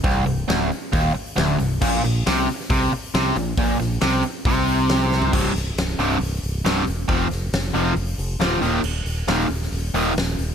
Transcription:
<<
  \new Staff \with { instrumentName = "Overdriven electric guitar" } { \clef bass \time 4/4 \key c \minor \tempo 4 = 136 c,8 c,8 d,8 r8 ees,8 r8 d,8 c,8 | bes,8 bes,8 c8 r8 c8 r8 c8 bes,8 | bes,8 bes,8 c8 r8 c2 | <c, g, c>8 r4 <c, g, c>8 r4 <c, g, c>8 r8 |
<f, c f>8 r4 <f, c f>8 r4 <f, c f>8 <ees, bes, ees>8 | r4 <ees, bes, ees>8 r4 <ees, bes, ees>8 r4 | }
  \new Staff \with { instrumentName = "Fingered electric bass" } { \clef bass \time 4/4 \key c \minor c,,8 c,,8 d,,8 r8 ees,,8 r8 d,,8 c,,8 | bes,,8 bes,,8 c,8 r8 c,8 r8 c,8 bes,,8 | bes,,8 bes,,8 c,8 r8 c,2 | c,,8 c,,8 c,,8 c,,8 c,,8 c,,8 c,,8 e,,8 |
f,,8 f,,8 f,,8 f,,8 f,,8 f,,8 d,,8 ees,,8 | ees,,8 ees,,8 ees,,8 ees,,8 ees,,8 ees,,8 ees,,8 ees,,8 | }
  \new DrumStaff \with { instrumentName = "Drums" } \drummode { \time 4/4 <hho bd>8 hho8 <hho sn>8 hho8 <hho bd>8 hho8 <hho sn>8 hho8 | <cymc bd>8 hho8 <hho sn>8 hho16 sn16 <hho bd>8 hho8 <hho sn>8 hho8 | <hho bd>8 <hho sn>8 <hho sn>8 hho8 <hho bd>8 hho8 <hho sn>8 sn16 tomfh16 | <cymc bd>8 <hho sn>8 <hho sn>8 hho8 hho8 hho8 <hho sn>8 hho8 |
<hho bd>8 <hho sn>8 <hho sn>8 hho8 hho8 hho8 <hho sn>8 hho8 | cymc8 hho8 <hho sn>8 hho16 sn16 hho8 hho8 <hho sn>8 hho8 | }
>>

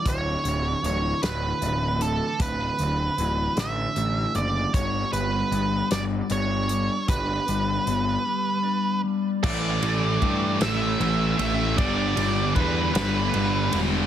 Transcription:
<<
  \new Staff \with { instrumentName = "Lead electric guitar" } { \time 6/8 \key g \lydian \tempo 4. = 51 cis''4 cis''8 b'4 a'8 | b'4. e''4 d''8 | cis''8 b'4 d''8 cis''4 | b'2~ b'8 r8 |
d''4. e''4 e''8 | d''4 b'8 b'4 r8 | }
  \new Staff \with { instrumentName = "Clean electric guitar" } { \clef bass \time 6/8 \key g \lydian d,8 d8 e8 d8 a8 d8 | d,8 d8 e8 d8 a8 d8 | g,8 g8 b8 g8 d'8 g8 | g,8 g8 b8 g8 d'8 g8 |
r2. | r2. | }
  \new Staff \with { instrumentName = "Distorted electric guitar" } { \clef bass \time 6/8 \key g \lydian r2. | r2. | r2. | r2. |
<a, e a>8 <a, e a>8 <a, e a>8 <a, e a>8 <a, e a>8 <a, e a>8 | <g, d g>8 <g, d g>8 <g, d g>8 <g, d g>8 <g, d g>8 <g, d g>8 | }
  \new Staff \with { instrumentName = "Distorted electric guitar" } { \clef bass \time 6/8 \key g \lydian r2. | r2. | r2. | r2. |
<a, e a>8 <a, e a>8 <a, e a>8 <a, e a>8 <a, e a>8 <a, e a>8 | <g, d g>8 <g, d g>8 <g, d g>8 <g, d g>8 <g, d g>8 <g, d g>8 | }
  \new Staff \with { instrumentName = "Picked electric bass" } { \clef bass \time 6/8 \key g \lydian d,,8 d,,8 d,,8 d,,8 d,,4 | d,,8 d,,8 d,,8 a,,8 a,,8 fis,,8 | g,,8 g,,8 g,,8 g,,8 g,,4 | g,,8 g,,8 g,,8 r4. |
a,,8 a,,8 g,8 a,,8 a,,8 a,,8 | g,,8 g,,8 e,8 g,,8 g,,8 e,,8 | }
  \new DrumStaff \with { instrumentName = "Drums" } \drummode { \time 6/8 <hh bd>8 hh8 hh8 <hh sn>8 hh8 hh8 | <hh bd>8 hh8 hh8 <hh sn>8 hh8 hh8 | <hh bd>8 hh8 hh8 <hh sn>8 hh8 hh8 | <hh bd>8 hh8 hh8 r4. |
<cymc bd>8 cymr8 <bd cymr>8 <cymr sn>8 cymr8 cymr8 | <bd cymr>8 cymr8 <bd cymr>8 <cymr sn>8 cymr8 cymr8 | }
>>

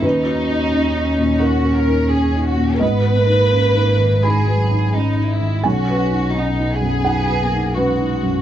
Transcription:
<<
  \new Staff \with { instrumentName = "Violin section" } { \time 4/4 \key gis \minor \tempo 4 = 86 dis'2 fis'8 ais'8 gis'8 fis'8 | b'2 gis'4 dis'8 e'8 | fis'4 dis'8 gis'4. fis'4 | }
  \new Staff \with { instrumentName = "Felt piano" } { \time 4/4 \key gis \minor << { b'2 ais'4 r4 | dis''2 b''2 | gis''2 fis''4 b'4 | } \\ { \tuplet 3/2 { dis,8 fis'8 dis'8 cis'8 dis'8 ais,8 dis'8 ais'8 dis'8 cis'8 dis'8 ais,8 } | \tuplet 3/2 { gis,8 b'8 dis'8 cis'8 dis'8 dis8 dis'8 b'8 dis'8 cis'8 dis'8 dis8 } | \tuplet 3/2 { b,,8 b'8 dis'8 cis'8 dis'8 fis,8 dis'8 b'8 dis'8 cis'8 dis'8 fis,8 } | } >> }
  \new Staff \with { instrumentName = "Cello" } { \time 4/4 \key gis \minor cis'1 | b8 ais4. gis8 fis8 gis4 | cis'4 b4 b8 ais8 gis4 | }
  \new Staff \with { instrumentName = "Double bass" } { \clef bass \time 4/4 \key gis \minor dis,1 | gis,,1 | b,,1 | }
>>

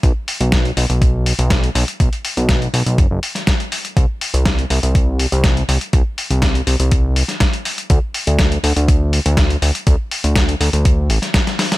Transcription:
<<
  \new Staff \with { instrumentName = "Analog synth bass" } { \clef bass \time 4/4 \key d \mixolydian \tempo 4 = 122 b,,16 r8 b,,8. b,,16 b,,4 b,,8. b,,16 r16 | b,,16 r8 b,,8. b,,16 b,,16 fis,,16 fis,,16 r4. | c,16 r8 c,8. c,16 c,4 c,8. c,16 r16 | c,16 r8 c,8. c,16 c,4 r4 r16 |
d,16 r8 d,8. d,16 d,4 d,8. d,16 r16 | d,16 r8 d,8. d,16 d,8. a,,16 r4 r16 | }
  \new DrumStaff \with { instrumentName = "Drums" } \drummode { \time 4/4 <hh bd>8 hho16 hh16 <hh bd sn>16 hh16 hho16 hh16 <hh bd>8 hho16 hh16 <hh bd sn>16 hh16 hho16 hh16 | <hh bd>16 hh16 hho16 hh16 <hh bd sn>16 hh16 hho16 hh16 <hh bd>8 hho16 <hh sn>16 <hh bd sn>16 hh16 hho16 hh16 | <hh bd>8 hho16 hh16 <hh bd sn>16 hh16 hho16 hh16 <hh bd>8 hho16 hh16 <hh bd sn>16 hh16 hho16 hh16 | <hh bd>8 hho16 hh16 <hh bd sn>16 hh16 hho16 hh16 <hh bd>8 hho16 <hh sn>16 <hh bd sn>16 hh16 hho16 hh16 |
<hh bd>8 hho16 hh16 <hh bd sn>16 hh16 hho16 hh16 <hh bd>8 hho16 hh16 <hh bd sn>16 hh16 hho16 hh16 | <hh bd>8 hho16 hh16 <hh bd sn>16 hh16 hho16 hh16 <hh bd>8 hho16 <hh sn>16 <hh bd sn>16 <hh sn>16 <hho sn>16 <hh sn>16 | }
>>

